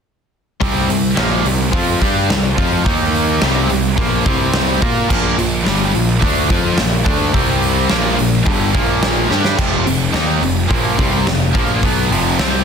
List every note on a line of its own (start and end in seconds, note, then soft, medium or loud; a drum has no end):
0.60 0.88 C2 loud
0.60 0.87 C3 medium
0.60 0.88 G3 loud
0.60 0.89 C4 loud
0.60 kick loud
0.60 open hi-hat medium
0.89 1.16 C2 medium
0.89 1.12 C3 medium
0.89 1.12 G3 medium
0.89 open hi-hat medium
1.16 1.44 A#1 medium
1.16 1.44 A#2 medium
1.16 1.45 F3 medium
1.16 1.45 A#3 medium
1.16 snare loud
1.45 1.71 C2 medium
1.45 1.68 C3 medium
1.45 1.68 G3 medium
1.45 open hi-hat medium
1.72 2.00 F2 medium
1.72 2.00 F3 medium
1.72 2.00 C4 loud
1.72 2.00 F4 loud
1.72 kick loud
1.72 open hi-hat medium
2.01 2.28 G2 loud
2.01 2.28 G3 medium
2.01 2.29 D4 loud
2.01 2.29 G4 loud
2.01 kick medium
2.01 open hi-hat medium
2.29 2.56 C2 medium
2.29 2.52 C3 medium
2.29 2.52 G3 medium
2.29 snare loud
2.29 open hi-hat medium
2.57 2.84 F2 medium
2.57 2.85 F3 loud
2.57 2.85 C4 loud
2.57 2.85 F4 loud
2.57 kick medium
2.57 open hi-hat medium
2.85 3.38 D#2 medium
2.85 3.40 D#3 medium
2.85 3.41 A#3 loud
2.85 3.41 D#4 loud
2.85 kick loud
2.85 open hi-hat medium
3.14 open hi-hat medium
3.41 3.68 C2 loud
3.41 3.68 C3 medium
3.41 3.69 G3 loud
3.41 3.69 C4 loud
3.41 snare loud
3.69 3.96 C2 medium
3.69 3.92 C3 medium
3.69 3.92 G3 medium
3.69 open hi-hat medium
3.97 4.24 A#1 loud
3.97 4.24 A#2 medium
3.97 4.25 F3 medium
3.97 4.25 A#3 medium
3.97 kick loud
4.25 4.78 C2 medium
4.25 4.81 C3 loud
4.25 4.81 G3 loud
4.25 4.81 C4 loud
4.25 kick loud
4.25 open hi-hat medium
4.54 snare loud
4.54 open hi-hat medium
4.81 5.08 A#2 medium
4.81 5.09 A#3 loud
4.81 5.09 F4 loud
4.81 5.09 A#4 loud
4.81 kick loud
5.09 5.37 A#1 medium
5.09 5.36 A#2 medium
5.09 5.37 F3 loud
5.09 5.37 A#3 loud
5.09 kick loud
5.09 crash loud
5.37 5.65 A#1 medium
5.37 5.60 A#2 medium
5.37 5.60 F3 medium
5.37 open hi-hat medium
5.66 5.93 G1 loud
5.66 5.93 G2 medium
5.66 5.93 D3 medium
5.66 5.93 G3 loud
5.66 snare loud
5.66 open hi-hat medium
5.94 6.21 A#1 medium
5.94 6.16 A#2 medium
5.94 6.17 F3 medium
5.94 open hi-hat medium
6.22 6.48 D2 loud
6.22 6.49 D3 medium
6.22 6.50 A3 medium
6.22 6.50 D4 loud
6.22 kick loud
6.22 open hi-hat medium
6.50 6.76 F2 loud
6.50 6.77 F3 loud
6.50 6.77 C4 loud
6.50 6.78 F4 loud
6.50 kick loud
6.50 open hi-hat medium
6.78 7.05 A#1 medium
6.78 7.01 A#2 medium
6.78 7.01 F3 medium
6.78 snare loud
6.78 open hi-hat medium
7.06 7.32 D2 medium
7.06 7.32 D3 medium
7.06 7.33 A3 medium
7.06 7.34 D4 loud
7.06 kick loud
7.33 7.87 C2 loud
7.33 7.89 C3 loud
7.33 7.89 G3 loud
7.33 7.89 C4 loud
7.33 kick medium
7.33 open hi-hat medium
7.62 open hi-hat medium
7.89 8.17 A#1 medium
7.89 8.17 A#2 loud
7.89 8.17 F3 medium
7.89 8.17 A#3 loud
7.89 snare loud
7.89 open hi-hat medium
8.18 8.45 A#1 medium
8.18 8.41 A#2 medium
8.18 8.41 F3 medium
8.18 open hi-hat medium
8.44 8.73 G1 loud
8.44 8.72 G2 medium
8.44 8.72 D3 medium
8.44 8.72 G3 medium
8.44 kick loud
8.44 open hi-hat medium
8.73 9.27 A#1 medium
8.73 9.29 A#2 loud
8.73 9.29 F3 medium
8.73 9.29 A#3 medium
8.73 kick loud
9.03 snare loud
9.03 open hi-hat medium
9.29 9.57 G2 medium
9.29 9.57 G3 medium
9.29 9.58 D4 loud
9.29 9.58 G4 loud
9.29 snare medium
9.45 snare medium
9.58 9.85 F1 loud
9.58 9.85 F2 loud
9.58 9.85 C3 medium
9.58 9.86 F3 loud
9.58 kick loud
9.58 crash loud
9.86 10.13 F1 medium
9.86 10.09 F2 medium
9.86 10.09 C3 medium
9.86 open hi-hat medium
10.13 10.41 D#2 medium
10.13 10.41 D#3 medium
10.13 10.42 A#3 medium
10.13 10.42 D#4 loud
10.13 snare loud
10.13 open hi-hat medium
10.42 10.69 F1 medium
10.42 10.65 F2 medium
10.42 10.65 C3 medium
10.42 open hi-hat medium
10.69 10.97 A#1 loud
10.69 10.97 A#2 medium
10.69 10.97 F3 medium
10.69 10.98 A#3 loud
10.69 kick loud
10.69 open hi-hat medium
10.98 11.25 C2 medium
10.98 11.26 C3 medium
10.98 11.26 G3 loud
10.98 11.26 C4 loud
10.98 kick loud
10.98 open hi-hat medium
11.27 11.53 F1 medium
11.27 11.49 F2 medium
11.27 11.49 C3 medium
11.27 snare loud
11.27 open hi-hat medium
11.54 11.81 A#1 medium
11.54 11.82 A#2 medium
11.54 11.82 F3 medium
11.54 11.82 A#3 loud
11.54 kick loud
11.83 12.09 B1 medium
11.83 12.10 B2 medium
11.83 12.10 F#3 loud
11.83 12.10 B3 loud
11.83 kick medium
11.83 open hi-hat medium
12.10 12.37 F1 loud
12.10 12.38 F2 medium
12.10 12.38 C3 loud
12.10 12.39 F3 loud
12.10 open hi-hat medium
12.39 12.64 C2 medium
12.39 12.64 C3 medium
12.39 12.64 G3 loud
12.39 12.64 C4 medium
12.39 snare loud
12.39 open hi-hat medium